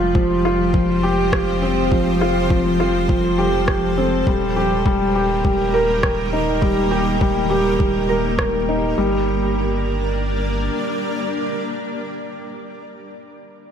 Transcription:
0.00 4.24 F1 medium
0.00 0.15 F3 medium
0.00 4.23 F3 medium
0.00 4.23 G3 medium
0.00 4.23 C4 medium
0.00 0.14 F4 medium
0.00 1.89 G4 medium
0.00 4.23 C5 medium
0.15 0.43 F3 medium
0.15 kick medium
0.45 0.61 F4 medium
0.74 1.02 F3 medium
0.74 kick medium
1.03 1.20 G4 medium
1.33 1.50 G4 medium
1.33 kick medium
1.33 cross-stick medium
1.62 1.90 C4 medium
1.92 2.20 F3 medium
1.92 4.25 A4 medium
1.92 kick medium
2.21 2.49 F4 medium
2.50 2.78 F3 medium
2.50 kick medium
2.80 2.96 F4 medium
3.09 3.37 F3 medium
3.09 kick medium
3.38 3.55 G4 medium
3.68 3.85 G4 medium
3.68 kick medium
3.68 cross-stick medium
3.98 4.25 C4 medium
4.27 8.94 D#1 medium
4.27 8.94 D#3 medium
4.27 8.94 G3 medium
4.27 4.55 G3 medium
4.27 8.93 A#3 medium
4.27 8.94 G4 medium
4.27 8.94 A#4 medium
4.27 kick medium
4.56 4.84 G4 medium
4.86 5.13 G3 medium
4.86 kick medium
5.15 5.32 G4 medium
5.45 5.72 G3 medium
5.45 kick medium
5.74 5.90 A#4 medium
6.03 6.20 A#4 medium
6.03 kick medium
6.03 cross-stick medium
6.33 6.61 D#4 medium
6.62 6.90 G3 medium
6.62 kick medium
6.91 7.19 G4 medium
7.21 7.49 G3 medium
7.21 kick medium
7.50 7.67 G4 medium
7.79 8.07 G3 medium
7.79 kick medium
8.09 8.26 A#4 medium
8.39 8.55 A#4 medium
8.39 kick medium
8.39 cross-stick medium
8.69 8.96 D#4 medium
8.97 10.70 G1 medium
8.97 12.06 G3 medium
8.97 9.25 G3 medium
8.97 12.06 A#3 medium
8.97 12.06 D4 medium
8.97 12.06 A#4 medium
8.97 12.06 D5 medium

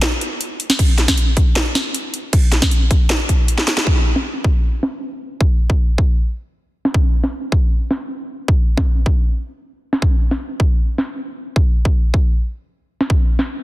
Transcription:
0.02 snare loud
0.02 closed hi-hat medium
0.21 closed hi-hat medium
0.41 closed hi-hat medium
0.60 closed hi-hat medium
0.70 snare medium
0.79 kick loud
0.79 closed hi-hat medium
0.79 crash soft
0.98 snare medium
0.98 closed hi-hat medium
1.08 kick medium
1.08 snare medium
1.18 closed hi-hat medium
1.37 kick loud
1.37 closed hi-hat medium
1.56 snare loud
1.56 closed hi-hat medium
1.75 snare medium
1.75 closed hi-hat medium
1.94 closed hi-hat medium
2.14 closed hi-hat medium
2.33 kick loud
2.33 closed hi-hat medium
2.33 crash soft
2.52 snare medium
2.52 closed hi-hat medium
2.62 kick loud
2.62 snare medium
2.71 closed hi-hat medium
2.91 kick loud
2.91 closed hi-hat medium
3.10 snare loud
3.10 closed hi-hat medium
3.29 kick medium
3.29 closed hi-hat medium
3.48 closed hi-hat medium
3.58 snare medium
3.68 snare medium
3.68 closed hi-hat medium
3.77 snare medium
3.87 kick loud
4.16 snare medium
4.44 kick medium
4.83 snare medium
5.41 kick loud
5.70 kick loud
5.98 kick loud
6.85 snare medium
6.94 kick loud
7.24 snare medium
7.52 kick loud
7.91 snare medium
8.48 kick loud
8.77 kick loud
8.77 snare medium
9.06 kick medium
9.93 snare medium
10.02 kick loud
10.31 snare medium
10.60 kick medium
10.98 snare medium
11.56 kick loud
11.85 kick medium
12.14 kick medium
13.01 snare medium
13.10 kick loud
13.39 snare medium

